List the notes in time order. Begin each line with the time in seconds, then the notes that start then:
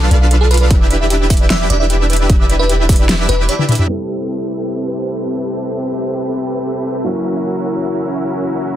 Already playing: A4
0.01 D6
0.11 B1 D4 F4 A4 B4 D5 F5, closed hi-hat
0.21 F5
0.31 A4, closed hi-hat
0.41 A4
0.51 B4, closed hi-hat
0.54 closed hi-hat
0.57 B4 D5, closed hi-hat
0.71 E1 D4 E4 G4 B4 E5, kick, closed hi-hat
0.81 D6
0.91 D5, closed hi-hat
1.01 E5
1.10 G4, closed hi-hat
1.21 G4
1.30 B4, kick, closed hi-hat, open hi-hat
1.37 D5, closed hi-hat
1.50 G4 E5, snare, closed hi-hat
1.60 D6
1.70 E1 D4 E4 G4 B4 D5 E5, closed hi-hat
1.80 D5 E5
1.90 G4, closed hi-hat
2.00 G4
2.10 B4, closed hi-hat
2.13 closed hi-hat
2.16 D5, closed hi-hat
2.29 E1 D4 E4 G4 B4 E5, kick, closed hi-hat
2.40 D6
2.49 D5, closed hi-hat
2.59 B4 E5
2.69 G4, closed hi-hat
2.79 G4
2.89 B4, kick, closed hi-hat, open hi-hat
2.96 D5, closed hi-hat
3.09 G4, snare, closed hi-hat
3.19 D6
3.29 E1 D4 E4 G4 B4 E5, closed hi-hat
3.39 B5
3.49 B4 D5, closed hi-hat
3.59 B4, high tom
3.69 B5, closed hi-hat, mid tom
3.72 closed hi-hat
3.75 G4, closed hi-hat, mid tom
3.86 G3 C4 E4 G4 A4 B4 E5
3.99 A5
4.08 B4
4.18 C5
4.28 G4
4.38 G4
4.48 A4
4.58 B4
4.68 G4
4.78 A5
4.88 B4
4.98 C5
5.08 G4
5.27 A4
5.38 B4
5.47 G4
5.58 A5
5.67 B4
5.77 C5
5.87 G4
5.97 G4
6.07 A4
6.17 B4
6.27 G4
6.37 A5
6.47 B4
6.57 C5
6.67 G4
6.77 G4
6.86 A4
6.97 B4
7.04 F#3 A#3 C#4 E4 F#4 A#4 E5
7.08 A#4
7.16 C#6
7.26 C#5
7.36 E5
7.46 F#4
7.56 F#4
7.66 A#4
7.76 C#5
7.86 F#4
7.96 C#6
8.06 C#5
8.16 E5
8.26 F#4
8.36 F#4
8.45 A#4
8.55 C#5
8.65 F#4